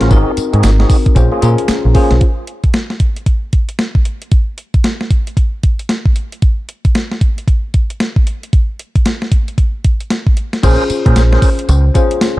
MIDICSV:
0, 0, Header, 1, 6, 480
1, 0, Start_track
1, 0, Key_signature, -5, "minor"
1, 0, Tempo, 526316
1, 98, Time_signature, 4, 2, 24, 8
1, 11302, End_track
2, 0, Start_track
2, 0, Title_t, "Tine electric piano"
2, 0, Program_c, 0, 4
2, 0, Control_c, 0, 64, 127
2, 0, Note_on_c, 0, 61, 78
2, 0, Note_on_c, 0, 65, 66
2, 0, Note_on_c, 0, 68, 64
2, 0, Note_on_c, 0, 70, 102
2, 0, Note_on_c, 0, 72, 77
2, 95, Note_on_c, 0, 60, 94
2, 98, Note_on_c, 0, 63, 86
2, 104, Note_on_c, 0, 66, 82
2, 106, Note_off_c, 0, 70, 0
2, 106, Note_on_c, 0, 70, 98
2, 111, Control_c, 0, 64, 0
2, 115, Note_off_c, 0, 61, 0
2, 116, Note_off_c, 0, 65, 0
2, 118, Note_off_c, 0, 68, 0
2, 119, Note_off_c, 0, 72, 0
2, 250, Control_c, 0, 64, 127
2, 985, Note_off_c, 0, 60, 0
2, 986, Note_off_c, 0, 63, 0
2, 989, Note_off_c, 0, 66, 0
2, 990, Note_off_c, 0, 70, 0
2, 1052, Note_on_c, 0, 61, 93
2, 1056, Note_on_c, 0, 65, 81
2, 1059, Note_on_c, 0, 68, 78
2, 1063, Note_on_c, 0, 72, 96
2, 1069, Control_c, 0, 64, 0
2, 1222, Control_c, 0, 64, 127
2, 1277, Note_off_c, 0, 61, 0
2, 1279, Note_off_c, 0, 65, 0
2, 1281, Note_off_c, 0, 68, 0
2, 1283, Note_off_c, 0, 72, 0
2, 1293, Note_on_c, 0, 61, 95
2, 1296, Note_on_c, 0, 65, 82
2, 1301, Note_on_c, 0, 68, 83
2, 1303, Note_on_c, 0, 70, 107
2, 1740, Note_off_c, 0, 61, 0
2, 1742, Note_off_c, 0, 65, 0
2, 1744, Note_off_c, 0, 68, 0
2, 1745, Note_off_c, 0, 70, 0
2, 1772, Note_on_c, 0, 61, 79
2, 1776, Note_on_c, 0, 65, 66
2, 1780, Note_on_c, 0, 68, 67
2, 1784, Note_on_c, 0, 72, 81
2, 1997, Note_off_c, 0, 61, 0
2, 1999, Note_off_c, 0, 65, 0
2, 2002, Note_off_c, 0, 68, 0
2, 2003, Note_off_c, 0, 72, 0
2, 2029, Control_c, 0, 64, 0
2, 9693, Note_on_c, 0, 61, 85
2, 9697, Note_on_c, 0, 65, 82
2, 9700, Note_on_c, 0, 68, 80
2, 9704, Note_on_c, 0, 72, 102
2, 9875, Control_c, 0, 64, 127
2, 10584, Note_off_c, 0, 61, 0
2, 10586, Note_off_c, 0, 65, 0
2, 10587, Note_off_c, 0, 68, 0
2, 10589, Note_off_c, 0, 72, 0
2, 10892, Note_on_c, 0, 61, 96
2, 10895, Note_on_c, 0, 65, 85
2, 10899, Note_on_c, 0, 68, 88
2, 10903, Note_on_c, 0, 72, 96
2, 11302, Note_off_c, 0, 61, 0
2, 11302, Note_off_c, 0, 65, 0
2, 11302, Note_off_c, 0, 68, 0
2, 11302, Note_off_c, 0, 72, 0
2, 11302, End_track
3, 0, Start_track
3, 0, Title_t, "Tonewheel organ"
3, 0, Program_c, 1, 16
3, 1, Note_on_c, 1, 61, 78
3, 4, Note_on_c, 1, 65, 73
3, 6, Note_on_c, 1, 66, 72
3, 8, Note_on_c, 1, 70, 87
3, 89, Note_off_c, 1, 66, 0
3, 95, Note_on_c, 1, 60, 92
3, 97, Note_on_c, 1, 63, 83
3, 100, Note_on_c, 1, 66, 84
3, 102, Note_on_c, 1, 68, 99
3, 163, Note_off_c, 1, 61, 0
3, 165, Note_off_c, 1, 65, 0
3, 166, Note_off_c, 1, 70, 0
3, 287, Note_off_c, 1, 60, 0
3, 288, Note_off_c, 1, 63, 0
3, 289, Note_off_c, 1, 66, 0
3, 290, Note_off_c, 1, 68, 0
3, 480, Note_on_c, 1, 60, 76
3, 481, Note_on_c, 1, 63, 68
3, 482, Note_on_c, 1, 66, 66
3, 484, Note_on_c, 1, 68, 84
3, 643, Note_off_c, 1, 60, 0
3, 643, Note_off_c, 1, 63, 0
3, 644, Note_off_c, 1, 66, 0
3, 645, Note_off_c, 1, 68, 0
3, 720, Note_on_c, 1, 60, 75
3, 723, Note_on_c, 1, 63, 68
3, 724, Note_on_c, 1, 66, 68
3, 726, Note_on_c, 1, 68, 80
3, 882, Note_off_c, 1, 60, 0
3, 884, Note_off_c, 1, 63, 0
3, 885, Note_off_c, 1, 66, 0
3, 886, Note_off_c, 1, 68, 0
3, 1200, Note_on_c, 1, 58, 80
3, 1202, Note_on_c, 1, 61, 73
3, 1204, Note_on_c, 1, 65, 73
3, 1205, Note_on_c, 1, 68, 88
3, 1362, Note_off_c, 1, 58, 0
3, 1364, Note_off_c, 1, 61, 0
3, 1365, Note_off_c, 1, 65, 0
3, 1365, Note_off_c, 1, 68, 0
3, 1771, Note_on_c, 1, 58, 72
3, 1774, Note_on_c, 1, 61, 67
3, 1775, Note_on_c, 1, 65, 72
3, 1777, Note_on_c, 1, 68, 89
3, 1965, Note_off_c, 1, 58, 0
3, 1966, Note_off_c, 1, 61, 0
3, 1967, Note_off_c, 1, 65, 0
3, 1968, Note_off_c, 1, 68, 0
3, 9694, Note_on_c, 1, 61, 95
3, 9696, Note_on_c, 1, 68, 82
3, 9697, Note_on_c, 1, 70, 89
3, 9698, Note_on_c, 1, 72, 99
3, 9886, Note_off_c, 1, 61, 0
3, 9887, Note_off_c, 1, 68, 0
3, 9888, Note_off_c, 1, 70, 0
3, 9888, Note_off_c, 1, 72, 0
3, 10081, Note_on_c, 1, 61, 74
3, 10083, Note_on_c, 1, 68, 76
3, 10085, Note_on_c, 1, 70, 74
3, 10087, Note_on_c, 1, 72, 82
3, 10243, Note_off_c, 1, 61, 0
3, 10244, Note_off_c, 1, 68, 0
3, 10245, Note_off_c, 1, 70, 0
3, 10246, Note_off_c, 1, 72, 0
3, 10321, Note_on_c, 1, 61, 75
3, 10323, Note_on_c, 1, 68, 73
3, 10325, Note_on_c, 1, 70, 70
3, 10327, Note_on_c, 1, 72, 78
3, 10483, Note_off_c, 1, 61, 0
3, 10484, Note_off_c, 1, 68, 0
3, 10485, Note_off_c, 1, 70, 0
3, 10486, Note_off_c, 1, 72, 0
3, 11302, End_track
4, 0, Start_track
4, 0, Title_t, "Picked electric bass"
4, 0, Program_c, 2, 34
4, 11, Note_on_c, 2, 33, 84
4, 79, Note_off_c, 2, 33, 0
4, 101, Note_on_c, 2, 32, 104
4, 211, Note_off_c, 2, 32, 0
4, 490, Note_on_c, 2, 44, 91
4, 558, Note_off_c, 2, 44, 0
4, 582, Note_on_c, 2, 32, 97
4, 761, Note_off_c, 2, 32, 0
4, 1059, Note_on_c, 2, 34, 114
4, 1170, Note_off_c, 2, 34, 0
4, 1304, Note_on_c, 2, 46, 98
4, 1413, Note_off_c, 2, 46, 0
4, 1688, Note_on_c, 2, 34, 79
4, 1757, Note_off_c, 2, 34, 0
4, 1927, Note_on_c, 2, 35, 79
4, 1997, Note_off_c, 2, 35, 0
4, 9699, Note_on_c, 2, 34, 107
4, 9810, Note_off_c, 2, 34, 0
4, 10088, Note_on_c, 2, 46, 96
4, 10157, Note_off_c, 2, 46, 0
4, 10182, Note_on_c, 2, 34, 86
4, 10362, Note_off_c, 2, 34, 0
4, 10662, Note_on_c, 2, 37, 110
4, 10841, Note_off_c, 2, 37, 0
4, 11302, End_track
5, 0, Start_track
5, 0, Title_t, "Muted picked electric bass strokes"
5, 344, Note_on_c, 9, 29, 50
5, 435, Note_off_c, 9, 29, 0
5, 1541, Note_on_c, 9, 29, 45
5, 1632, Note_off_c, 9, 29, 0
5, 9944, Note_on_c, 9, 29, 51
5, 10035, Note_off_c, 9, 29, 0
5, 11302, End_track
6, 0, Start_track
6, 0, Title_t, "Drums"
6, 6, Note_on_c, 9, 38, 74
6, 8, Note_on_c, 9, 42, 56
6, 97, Note_off_c, 9, 38, 0
6, 98, Note_off_c, 9, 42, 0
6, 98, Note_on_c, 9, 42, 65
6, 98, Note_on_c, 9, 54, 78
6, 99, Note_on_c, 9, 36, 127
6, 189, Note_off_c, 9, 42, 0
6, 189, Note_off_c, 9, 54, 0
6, 191, Note_off_c, 9, 36, 0
6, 338, Note_on_c, 9, 42, 74
6, 339, Note_on_c, 9, 54, 70
6, 429, Note_off_c, 9, 42, 0
6, 431, Note_off_c, 9, 54, 0
6, 488, Note_on_c, 9, 42, 62
6, 578, Note_off_c, 9, 42, 0
6, 578, Note_on_c, 9, 42, 81
6, 578, Note_on_c, 9, 54, 102
6, 580, Note_on_c, 9, 38, 124
6, 580, Note_on_c, 9, 39, 86
6, 669, Note_off_c, 9, 42, 0
6, 669, Note_off_c, 9, 54, 0
6, 671, Note_off_c, 9, 38, 0
6, 671, Note_off_c, 9, 39, 0
6, 728, Note_on_c, 9, 38, 60
6, 818, Note_on_c, 9, 36, 104
6, 818, Note_on_c, 9, 46, 78
6, 820, Note_off_c, 9, 38, 0
6, 820, Note_on_c, 9, 54, 75
6, 909, Note_off_c, 9, 36, 0
6, 909, Note_off_c, 9, 46, 0
6, 911, Note_off_c, 9, 54, 0
6, 967, Note_on_c, 9, 42, 57
6, 969, Note_on_c, 9, 36, 91
6, 1057, Note_off_c, 9, 36, 0
6, 1057, Note_on_c, 9, 36, 95
6, 1058, Note_off_c, 9, 42, 0
6, 1058, Note_on_c, 9, 42, 79
6, 1058, Note_on_c, 9, 54, 69
6, 1148, Note_off_c, 9, 36, 0
6, 1149, Note_off_c, 9, 42, 0
6, 1150, Note_off_c, 9, 54, 0
6, 1298, Note_on_c, 9, 42, 78
6, 1298, Note_on_c, 9, 54, 64
6, 1389, Note_off_c, 9, 42, 0
6, 1389, Note_off_c, 9, 54, 0
6, 1444, Note_on_c, 9, 42, 61
6, 1535, Note_off_c, 9, 42, 0
6, 1535, Note_on_c, 9, 38, 108
6, 1538, Note_on_c, 9, 54, 94
6, 1539, Note_on_c, 9, 39, 99
6, 1539, Note_on_c, 9, 42, 65
6, 1626, Note_off_c, 9, 38, 0
6, 1629, Note_off_c, 9, 54, 0
6, 1630, Note_off_c, 9, 39, 0
6, 1630, Note_off_c, 9, 42, 0
6, 1776, Note_on_c, 9, 46, 72
6, 1778, Note_on_c, 9, 36, 96
6, 1867, Note_off_c, 9, 46, 0
6, 1870, Note_off_c, 9, 36, 0
6, 1921, Note_on_c, 9, 38, 67
6, 1924, Note_on_c, 9, 42, 55
6, 2013, Note_off_c, 9, 38, 0
6, 2015, Note_off_c, 9, 42, 0
6, 2015, Note_on_c, 9, 42, 57
6, 2018, Note_on_c, 9, 36, 114
6, 2106, Note_off_c, 9, 42, 0
6, 2109, Note_off_c, 9, 36, 0
6, 2256, Note_on_c, 9, 42, 62
6, 2347, Note_off_c, 9, 42, 0
6, 2404, Note_on_c, 9, 42, 52
6, 2406, Note_on_c, 9, 36, 88
6, 2495, Note_off_c, 9, 42, 0
6, 2495, Note_on_c, 9, 42, 72
6, 2497, Note_off_c, 9, 36, 0
6, 2498, Note_on_c, 9, 38, 111
6, 2587, Note_off_c, 9, 42, 0
6, 2589, Note_off_c, 9, 38, 0
6, 2646, Note_on_c, 9, 38, 54
6, 2735, Note_on_c, 9, 42, 66
6, 2736, Note_on_c, 9, 36, 88
6, 2737, Note_off_c, 9, 38, 0
6, 2826, Note_off_c, 9, 42, 0
6, 2827, Note_off_c, 9, 36, 0
6, 2886, Note_on_c, 9, 42, 47
6, 2976, Note_off_c, 9, 42, 0
6, 2976, Note_on_c, 9, 36, 89
6, 2976, Note_on_c, 9, 42, 72
6, 3067, Note_off_c, 9, 36, 0
6, 3068, Note_off_c, 9, 42, 0
6, 3217, Note_on_c, 9, 42, 71
6, 3219, Note_on_c, 9, 36, 84
6, 3308, Note_off_c, 9, 42, 0
6, 3310, Note_off_c, 9, 36, 0
6, 3362, Note_on_c, 9, 42, 56
6, 3453, Note_off_c, 9, 42, 0
6, 3454, Note_on_c, 9, 38, 100
6, 3458, Note_on_c, 9, 42, 62
6, 3545, Note_off_c, 9, 38, 0
6, 3549, Note_off_c, 9, 42, 0
6, 3602, Note_on_c, 9, 36, 90
6, 3694, Note_off_c, 9, 36, 0
6, 3696, Note_on_c, 9, 42, 67
6, 3788, Note_off_c, 9, 42, 0
6, 3845, Note_on_c, 9, 42, 49
6, 3935, Note_off_c, 9, 42, 0
6, 3935, Note_on_c, 9, 42, 61
6, 3937, Note_on_c, 9, 36, 124
6, 4027, Note_off_c, 9, 42, 0
6, 4028, Note_off_c, 9, 36, 0
6, 4175, Note_on_c, 9, 42, 60
6, 4266, Note_off_c, 9, 42, 0
6, 4324, Note_on_c, 9, 42, 54
6, 4325, Note_on_c, 9, 36, 89
6, 4415, Note_off_c, 9, 42, 0
6, 4415, Note_on_c, 9, 42, 72
6, 4416, Note_off_c, 9, 36, 0
6, 4417, Note_on_c, 9, 38, 114
6, 4506, Note_off_c, 9, 42, 0
6, 4508, Note_off_c, 9, 38, 0
6, 4566, Note_on_c, 9, 38, 56
6, 4656, Note_on_c, 9, 36, 91
6, 4657, Note_on_c, 9, 42, 73
6, 4658, Note_off_c, 9, 38, 0
6, 4748, Note_off_c, 9, 36, 0
6, 4748, Note_off_c, 9, 42, 0
6, 4807, Note_on_c, 9, 42, 49
6, 4896, Note_on_c, 9, 36, 83
6, 4898, Note_off_c, 9, 42, 0
6, 4898, Note_on_c, 9, 42, 70
6, 4987, Note_off_c, 9, 36, 0
6, 4990, Note_off_c, 9, 42, 0
6, 5138, Note_on_c, 9, 42, 68
6, 5140, Note_on_c, 9, 36, 86
6, 5229, Note_off_c, 9, 42, 0
6, 5231, Note_off_c, 9, 36, 0
6, 5284, Note_on_c, 9, 42, 56
6, 5373, Note_on_c, 9, 38, 95
6, 5375, Note_off_c, 9, 42, 0
6, 5377, Note_on_c, 9, 42, 61
6, 5465, Note_off_c, 9, 38, 0
6, 5468, Note_off_c, 9, 42, 0
6, 5523, Note_on_c, 9, 36, 94
6, 5614, Note_off_c, 9, 36, 0
6, 5616, Note_on_c, 9, 42, 71
6, 5707, Note_off_c, 9, 42, 0
6, 5767, Note_on_c, 9, 42, 47
6, 5857, Note_off_c, 9, 42, 0
6, 5857, Note_on_c, 9, 42, 58
6, 5859, Note_on_c, 9, 36, 109
6, 5948, Note_off_c, 9, 42, 0
6, 5950, Note_off_c, 9, 36, 0
6, 6099, Note_on_c, 9, 42, 66
6, 6190, Note_off_c, 9, 42, 0
6, 6246, Note_on_c, 9, 42, 57
6, 6247, Note_on_c, 9, 36, 89
6, 6337, Note_off_c, 9, 42, 0
6, 6338, Note_off_c, 9, 36, 0
6, 6338, Note_on_c, 9, 42, 75
6, 6341, Note_on_c, 9, 38, 108
6, 6430, Note_off_c, 9, 42, 0
6, 6432, Note_off_c, 9, 38, 0
6, 6489, Note_on_c, 9, 38, 56
6, 6578, Note_on_c, 9, 36, 93
6, 6579, Note_on_c, 9, 42, 72
6, 6580, Note_off_c, 9, 38, 0
6, 6669, Note_off_c, 9, 36, 0
6, 6670, Note_off_c, 9, 42, 0
6, 6731, Note_on_c, 9, 42, 46
6, 6818, Note_on_c, 9, 36, 92
6, 6821, Note_off_c, 9, 42, 0
6, 6821, Note_on_c, 9, 42, 68
6, 6909, Note_off_c, 9, 36, 0
6, 6912, Note_off_c, 9, 42, 0
6, 7058, Note_on_c, 9, 42, 70
6, 7061, Note_on_c, 9, 36, 82
6, 7149, Note_off_c, 9, 42, 0
6, 7152, Note_off_c, 9, 36, 0
6, 7207, Note_on_c, 9, 42, 55
6, 7298, Note_off_c, 9, 42, 0
6, 7298, Note_on_c, 9, 38, 100
6, 7302, Note_on_c, 9, 42, 60
6, 7389, Note_off_c, 9, 38, 0
6, 7393, Note_off_c, 9, 42, 0
6, 7445, Note_on_c, 9, 36, 98
6, 7536, Note_off_c, 9, 36, 0
6, 7541, Note_on_c, 9, 42, 67
6, 7632, Note_off_c, 9, 42, 0
6, 7691, Note_on_c, 9, 42, 48
6, 7780, Note_off_c, 9, 42, 0
6, 7780, Note_on_c, 9, 36, 117
6, 7780, Note_on_c, 9, 42, 58
6, 7871, Note_off_c, 9, 36, 0
6, 7871, Note_off_c, 9, 42, 0
6, 8020, Note_on_c, 9, 42, 66
6, 8112, Note_off_c, 9, 42, 0
6, 8167, Note_on_c, 9, 36, 91
6, 8168, Note_on_c, 9, 42, 57
6, 8259, Note_off_c, 9, 36, 0
6, 8259, Note_off_c, 9, 42, 0
6, 8259, Note_on_c, 9, 42, 74
6, 8261, Note_on_c, 9, 38, 109
6, 8350, Note_off_c, 9, 42, 0
6, 8352, Note_off_c, 9, 38, 0
6, 8407, Note_on_c, 9, 38, 61
6, 8496, Note_on_c, 9, 36, 102
6, 8497, Note_on_c, 9, 42, 75
6, 8498, Note_off_c, 9, 38, 0
6, 8588, Note_off_c, 9, 36, 0
6, 8588, Note_off_c, 9, 42, 0
6, 8646, Note_on_c, 9, 42, 50
6, 8736, Note_off_c, 9, 42, 0
6, 8736, Note_on_c, 9, 36, 88
6, 8736, Note_on_c, 9, 42, 64
6, 8827, Note_off_c, 9, 36, 0
6, 8828, Note_off_c, 9, 42, 0
6, 8978, Note_on_c, 9, 42, 75
6, 8980, Note_on_c, 9, 36, 87
6, 9069, Note_off_c, 9, 42, 0
6, 9071, Note_off_c, 9, 36, 0
6, 9124, Note_on_c, 9, 42, 52
6, 9215, Note_on_c, 9, 38, 97
6, 9216, Note_off_c, 9, 42, 0
6, 9219, Note_on_c, 9, 42, 63
6, 9306, Note_off_c, 9, 38, 0
6, 9310, Note_off_c, 9, 42, 0
6, 9362, Note_on_c, 9, 36, 99
6, 9454, Note_off_c, 9, 36, 0
6, 9456, Note_on_c, 9, 42, 71
6, 9547, Note_off_c, 9, 42, 0
6, 9605, Note_on_c, 9, 38, 67
6, 9607, Note_on_c, 9, 42, 50
6, 9696, Note_off_c, 9, 38, 0
6, 9698, Note_off_c, 9, 42, 0
6, 9698, Note_on_c, 9, 36, 127
6, 9698, Note_on_c, 9, 42, 66
6, 9698, Note_on_c, 9, 49, 104
6, 9698, Note_on_c, 9, 54, 78
6, 9790, Note_off_c, 9, 36, 0
6, 9790, Note_off_c, 9, 42, 0
6, 9790, Note_off_c, 9, 49, 0
6, 9790, Note_off_c, 9, 54, 0
6, 9939, Note_on_c, 9, 42, 72
6, 9941, Note_on_c, 9, 54, 65
6, 10030, Note_off_c, 9, 42, 0
6, 10032, Note_off_c, 9, 54, 0
6, 10086, Note_on_c, 9, 36, 99
6, 10087, Note_on_c, 9, 42, 61
6, 10177, Note_off_c, 9, 36, 0
6, 10177, Note_off_c, 9, 42, 0
6, 10177, Note_on_c, 9, 42, 77
6, 10177, Note_on_c, 9, 54, 107
6, 10179, Note_on_c, 9, 38, 113
6, 10268, Note_off_c, 9, 42, 0
6, 10268, Note_off_c, 9, 54, 0
6, 10270, Note_off_c, 9, 38, 0
6, 10329, Note_on_c, 9, 38, 66
6, 10417, Note_on_c, 9, 36, 108
6, 10417, Note_on_c, 9, 46, 83
6, 10420, Note_off_c, 9, 38, 0
6, 10420, Note_on_c, 9, 54, 68
6, 10508, Note_off_c, 9, 36, 0
6, 10509, Note_off_c, 9, 46, 0
6, 10511, Note_off_c, 9, 54, 0
6, 10569, Note_on_c, 9, 42, 58
6, 10659, Note_off_c, 9, 42, 0
6, 10659, Note_on_c, 9, 42, 77
6, 10659, Note_on_c, 9, 54, 72
6, 10750, Note_off_c, 9, 42, 0
6, 10750, Note_off_c, 9, 54, 0
6, 10899, Note_on_c, 9, 42, 78
6, 10899, Note_on_c, 9, 54, 66
6, 10900, Note_on_c, 9, 36, 84
6, 10990, Note_off_c, 9, 42, 0
6, 10990, Note_off_c, 9, 54, 0
6, 10991, Note_off_c, 9, 36, 0
6, 11044, Note_on_c, 9, 42, 60
6, 11136, Note_off_c, 9, 42, 0
6, 11138, Note_on_c, 9, 38, 108
6, 11141, Note_on_c, 9, 54, 88
6, 11142, Note_on_c, 9, 42, 63
6, 11229, Note_off_c, 9, 38, 0
6, 11233, Note_off_c, 9, 42, 0
6, 11233, Note_off_c, 9, 54, 0
6, 11302, End_track
0, 0, End_of_file